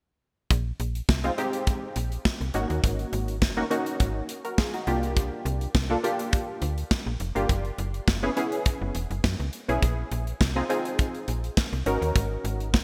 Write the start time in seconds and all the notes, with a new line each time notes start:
0.51 A#1, kick, closed hi-hat
0.80 A#1, closed hi-hat
0.95 closed hi-hat
1.09 C2, kick, snare
1.24 G#3 C4 D#4 F4, closed hi-hat
1.38 G#3 C4 D#4 G4, closed hi-hat
1.53 closed hi-hat
1.67 kick, closed hi-hat
1.96 A#1, closed hi-hat
2.12 closed hi-hat
2.25 kick, snare
2.41 C2, closed hi-hat
2.54 G#1 A#3 C#4 D#4 F#4, closed hi-hat
2.70 D#2, closed hi-hat
2.84 G#1, kick, closed hi-hat
2.99 closed hi-hat
3.13 G#1, closed hi-hat
3.28 closed hi-hat
3.42 F#1, kick, snare
3.57 A#3 C#4 D#4 F#4
3.70 A#3 C#4 D#4 F#4, closed hi-hat
3.86 closed hi-hat
4.00 G#1, kick, closed hi-hat
4.29 closed hi-hat
4.45 F#4 A#4, closed hi-hat
4.58 F4 G#4, kick, snare
4.74 D#4 F#4, closed hi-hat
4.87 C2 A#3 D4 F4 G4, closed hi-hat
5.03 closed hi-hat
5.17 kick, closed hi-hat
5.45 C2, closed hi-hat
5.61 closed hi-hat
5.75 C2, kick, snare
5.90 A#3 D4 F4 A4
6.03 A#3 D4 F4 G4, closed hi-hat
6.19 closed hi-hat
6.33 kick, closed hi-hat
6.62 D2, closed hi-hat
6.78 closed hi-hat
6.91 kick, snare
7.06 A#1
7.20 F1, closed hi-hat
7.35 G1 A#3 D4 F4 G4, closed hi-hat
7.49 F#1, kick, closed hi-hat
7.65 closed hi-hat
7.78 F#1, closed hi-hat
7.94 closed hi-hat
8.08 F#1, kick, snare
8.23 B3 C#4 E4 G#4
8.37 B3 C#4 E4 G#4, closed hi-hat
8.52 closed hi-hat
8.66 kick, closed hi-hat
8.82 F#1
8.95 E1, closed hi-hat
9.11 F#1, closed hi-hat
9.24 F#2, kick, snare
9.40 C#2, closed hi-hat
9.53 closed hi-hat
9.68 B1 B3 C#4 E4 G#4, closed hi-hat
9.82 A#1, kick, closed hi-hat
10.12 A#1, closed hi-hat
10.27 closed hi-hat
10.41 C2, kick, snare
10.56 C4 D#4 F4 G#4
10.69 C4 D#4 F4 G#4, closed hi-hat
10.85 closed hi-hat
10.99 kick, closed hi-hat
11.15 closed hi-hat
11.28 A#1, closed hi-hat
11.44 closed hi-hat
11.57 kick, snare
11.73 C2, closed hi-hat
11.86 G#1 C#4 D#4 F#4 A#4, closed hi-hat
12.02 D#2, closed hi-hat
12.16 G#1, kick, closed hi-hat
12.44 G#1, closed hi-hat
12.60 closed hi-hat
12.74 F#1, kick, snare